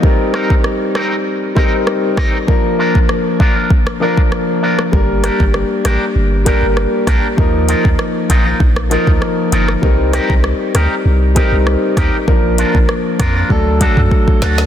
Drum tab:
HH |----------------|----------------|--x---x---x---x-|--x---x---x---x-|
SD |--r-r-r-----r-r-|----r----r--r--r|--r-r-r-----r-r-|----r----r--r--r|
BD |o--o------o---o-|o--o--o-o--o----|o--o------o---o-|o--o--o-o--o----|

HH |--x---x---x---x-|--x---x---x---x-|
SD |--r-r-r-----r-r-|----r-r-------oo|
BD |o--o------o---o-|o--o--o-o-oooo--|